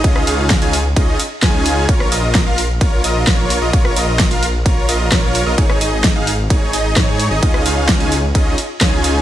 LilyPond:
<<
  \new Staff \with { instrumentName = "Supersaw synth" } { \time 4/4 \key bes \minor \tempo 4 = 130 <des' ees' f' aes' ees''>8 <des' ees' f' aes' f''>8. <des' ees' f' aes' aes''>16 r8 <des' ees' f' aes' ees''>8 r8 <des' ees' f' aes' aes''>4 | des''8 <f' bes' ees''>8. <f' bes' f''>16 r8 <f' bes' des''>8 <f' bes' ees''>8 <f' bes' des''>8. <f' bes' ees''>16 | <f' bes' des''>8 <f' bes' ees''>8. <f' bes' f''>16 r8 <f' bes' des''>8 <f' bes' ees''>8 <f' des''>8. <f' bes' ees''>16 | <ees' aes' des''>8 <ees' aes' ees''>8. <ees' aes' f''>16 r8 <ees' aes' des''>8 <ees' aes' ees''>8 <ees' aes' des''>8. <ees' aes' ees''>16 |
<des' ees' f' aes'>8 <des' ees' f' aes' f''>8. <des' ees' f' aes' aes''>16 r8 <des' ees' f' aes' ees''>8 r8 <des' ees' f' aes' aes''>4 | }
  \new Staff \with { instrumentName = "Detuned saw bass" } { \clef bass \time 4/4 \key bes \minor des,8 des,8. des,8. des,8 r8 des,4 | bes,,8 bes,,8. bes,,8. bes,,8 bes,,8 bes,,8. bes,,16 | bes,,8 bes,,8. bes,,8. bes,,8 bes,,8 bes,,8. bes,,16 | aes,,8 aes,,8. aes,,8. aes,,8 aes,,8 aes,8. aes,,16 |
des,8 des,8. des,8. des,8 r8 des,4 | }
  \new DrumStaff \with { instrumentName = "Drums" } \drummode { \time 4/4 <bd cymr>16 ss16 hho8 <bd cymr sn>16 hho16 hho8 <bd cymr>8 hho8 <bd cymr ss sn>8 hho8 | <bd cymr>16 ss16 hho8 <bd cymr sn>8 hho8 <bd cymr>8 hho8 <bd cymr ss sn>8 hho8 | <bd cymr>16 ss16 hho8 <bd cymr sn>16 hho16 hho8 <bd cymr>8 hho8 <bd cymr ss sn>8 hho8 | <bd cymr>16 ss16 hho8 <bd cymr sn>8 hho8 <bd cymr>8 hho8 <bd cymr ss sn>8 hho8 |
<bd cymr>16 ss16 hho8 <bd cymr sn>16 hho16 hho8 <bd cymr>8 hho8 <bd cymr ss sn>8 hho8 | }
>>